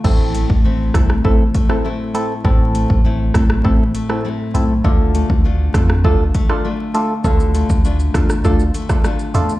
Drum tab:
CC |x---------------|----------------|----------------|----------------|
HH |--x---x---x---x-|--x---x---x---x-|--x---x---x---x-|--x---x---x---x-|
SH |----------------|----------------|----------------|xxxxxxxxxxxxxxxx|
SD |------rr---r----|------rr---r----|------rr---r----|------rr---rr---|
BD |o--o--o-o-o-----|o--o--o-o-------|o--o--o-o-o-----|o--o--o-o--o----|